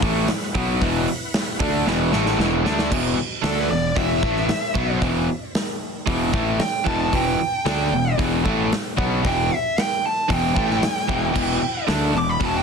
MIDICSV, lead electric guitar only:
0, 0, Header, 1, 2, 480
1, 0, Start_track
1, 0, Key_signature, 1, "minor"
1, 0, Tempo, 527241
1, 740, Time_signature, 4, 2, 24, 8
1, 11497, End_track
2, 0, Start_track
2, 0, Title_t, "Lead electric guitar"
2, 0, Program_c, 0, 29
2, 3145, Note_on_c, 0, 69, 81
2, 3257, Note_off_c, 0, 69, 0
2, 3277, Note_on_c, 0, 71, 92
2, 3375, Note_off_c, 0, 71, 0
2, 3379, Note_on_c, 0, 74, 81
2, 3610, Note_off_c, 0, 74, 0
2, 3613, Note_on_c, 0, 76, 101
2, 4545, Note_off_c, 0, 76, 0
2, 6013, Note_on_c, 0, 79, 93
2, 6247, Note_off_c, 0, 79, 0
2, 6254, Note_on_c, 0, 81, 82
2, 6371, Note_off_c, 0, 81, 0
2, 6382, Note_on_c, 0, 81, 92
2, 6495, Note_off_c, 0, 81, 0
2, 6514, Note_on_c, 0, 79, 96
2, 7436, Note_off_c, 0, 79, 0
2, 8442, Note_on_c, 0, 79, 94
2, 8689, Note_off_c, 0, 79, 0
2, 8689, Note_on_c, 0, 76, 95
2, 8921, Note_off_c, 0, 76, 0
2, 8921, Note_on_c, 0, 79, 78
2, 9142, Note_off_c, 0, 79, 0
2, 9155, Note_on_c, 0, 81, 98
2, 9379, Note_off_c, 0, 81, 0
2, 9396, Note_on_c, 0, 79, 102
2, 10791, Note_off_c, 0, 79, 0
2, 11085, Note_on_c, 0, 86, 95
2, 11189, Note_off_c, 0, 86, 0
2, 11201, Note_on_c, 0, 83, 89
2, 11335, Note_off_c, 0, 83, 0
2, 11335, Note_on_c, 0, 81, 99
2, 11439, Note_off_c, 0, 81, 0
2, 11439, Note_on_c, 0, 79, 91
2, 11497, Note_off_c, 0, 79, 0
2, 11497, End_track
0, 0, End_of_file